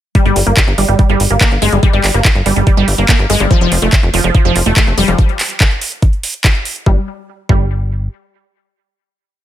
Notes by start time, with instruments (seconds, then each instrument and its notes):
0.15 synth arpeggio sound G3, kick, closed hi-hat
0.26 analog synth bass G1, synth arpeggio sound G3, closed hi-hat
0.36 analog synth bass G1, open hi-hat
0.47 analog synth bass G1, synth arpeggio sound A#3, closed hi-hat
0.57 kick, clap, closed hi-hat
0.67 analog synth bass G1, closed hi-hat
0.78 analog synth bass G1, synth arpeggio sound G3, open hi-hat
0.88 analog synth bass G1, synth arpeggio sound G3, closed hi-hat
0.99 synth arpeggio sound G3, kick, closed hi-hat
1.09 analog synth bass G1, synth arpeggio sound G3, closed hi-hat
1.20 analog synth bass G1, open hi-hat
1.30 analog synth bass G1, synth arpeggio sound A#3, closed hi-hat
1.41 synth arpeggio sound A#3, kick, clap, closed hi-hat
1.51 analog synth bass G1, closed hi-hat
1.62 analog synth bass G1, synth arpeggio sound G#3, open hi-hat
1.72 analog synth bass G1, synth arpeggio sound G3, closed hi-hat
1.83 synth arpeggio sound G3, kick, closed hi-hat
1.93 analog synth bass G1, synth arpeggio sound G3, closed hi-hat
2.04 analog synth bass G1, clap, open hi-hat
2.14 analog synth bass G1, synth arpeggio sound A#3, closed hi-hat
2.25 kick, clap, closed hi-hat
2.35 analog synth bass G1, closed hi-hat
2.46 analog synth bass G1, synth arpeggio sound G3, open hi-hat
2.56 analog synth bass G1, synth arpeggio sound G3, closed hi-hat
2.67 synth arpeggio sound G3, kick, closed hi-hat
2.77 analog synth bass G1, synth arpeggio sound G3, closed hi-hat
2.88 analog synth bass G1, open hi-hat
2.98 analog synth bass G1, synth arpeggio sound A#3, closed hi-hat
3.09 synth arpeggio sound A#3, kick, clap, closed hi-hat
3.19 analog synth bass G1, closed hi-hat
3.30 analog synth bass G1, synth arpeggio sound G#3, open hi-hat
3.40 analog synth bass G1, synth arpeggio sound G3
3.51 synth arpeggio sound F3, kick, closed hi-hat
3.61 analog synth bass F1, synth arpeggio sound F3, closed hi-hat
3.72 analog synth bass F1, open hi-hat
3.82 analog synth bass F1, synth arpeggio sound A3
3.93 kick, clap, closed hi-hat
4.03 analog synth bass F1, closed hi-hat
4.14 analog synth bass F1, synth arpeggio sound F3, open hi-hat
4.24 analog synth bass F1, synth arpeggio sound F3
4.35 synth arpeggio sound F3, kick, closed hi-hat
4.45 analog synth bass F1, synth arpeggio sound F3, closed hi-hat
4.56 analog synth bass F1, open hi-hat
4.66 analog synth bass F1, synth arpeggio sound A3, closed hi-hat
4.77 synth arpeggio sound A3, kick, clap, closed hi-hat
4.87 analog synth bass F1, closed hi-hat
4.98 analog synth bass F1, synth arpeggio sound G3, open hi-hat
5.08 analog synth bass F1, synth arpeggio sound F3, closed hi-hat
5.19 kick, closed hi-hat
5.29 closed hi-hat
5.40 clap, open hi-hat
5.50 closed hi-hat
5.60 kick, clap, closed hi-hat
5.71 closed hi-hat
5.81 open hi-hat
5.92 closed hi-hat
6.02 kick, closed hi-hat
6.13 closed hi-hat
6.23 open hi-hat
6.34 closed hi-hat
6.44 kick, clap, closed hi-hat
6.55 closed hi-hat
6.65 open hi-hat
6.76 closed hi-hat
6.86 analog synth bass G1, synth arpeggio sound G3, kick
7.49 analog synth bass G1, synth arpeggio sound G3, kick